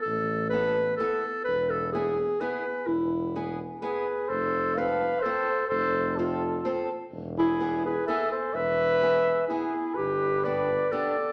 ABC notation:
X:1
M:3/4
L:1/8
Q:"Swing" 1/4=127
K:Ephr
V:1 name="Trumpet"
z6 | z6 | z4 B2 | c2 f2 c2 |
c2 A3 z | z ^G2 B e c | e4 ^G2 | B2 d2 d2 |]
V:2 name="Clarinet"
A2 B2 A2 | B A ^G2 B2 | E3 z ^G2 | A2 B2 A2 |
A2 F3 z | z E2 ^G A A | B4 E2 | G2 B2 A2 |]
V:3 name="Steel-string acoustic guitar"
z2 [B,EA] z [B,EA] z | z2 [B,E^G] z [B,EG] z | z2 [B,E^G] z [B,EG] z | z2 [CFA] z [CFA] z |
z2 [CFA] z [CFA] z | z2 [B,E^G] z [B,EG] z | z2 [B,E^G] z [B,EG] z | z2 [B,DG] z [B,DG] z |]
V:4 name="Tuba" clef=bass
A,,,6 | E,,,6 | E,,,6 | F,,,6 |
F,,,6 | E,,,6 | E,,,6 | G,,,6 |]